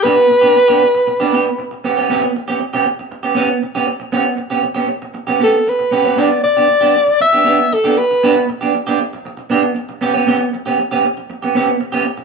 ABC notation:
X:1
M:4/4
L:1/16
Q:1/4=117
K:Edor
V:1 name="Alto saxophone"
B12- B2 z2 | z16 | z8 z2 A2 B4 | d2 d6 e4 A2 B2- |
B2 z12 z2 | z16 |]
V:2 name="Clean electric guitar"
[B,DG]2 z [B,DG] z [B,DG]2 z2 [B,DG] [B,DG] z3 [B,CG] [B,CG] | [B,CG]2 z [B,CG] z [B,CG]2 z2 [B,CG] [B,CG]2 z [B,CG]2 z | [B,CG]2 z [B,CG] z [B,CG]2 z2 [B,CG] [B,CG] z3 [B,CG] [B,CG] | [B,DG]2 z [B,DG] z [B,DG]2 z2 [B,DG] [B,DG]2 z [B,DG]2 z |
[B,DG]2 z [B,DG] z [B,DG]2 z3 [B,DG]2 z2 [B,CG] [B,CG] | [B,CG]2 z [B,CG] z [B,CG]2 z2 [B,CG] [B,CG]2 z [B,CG]2 z |]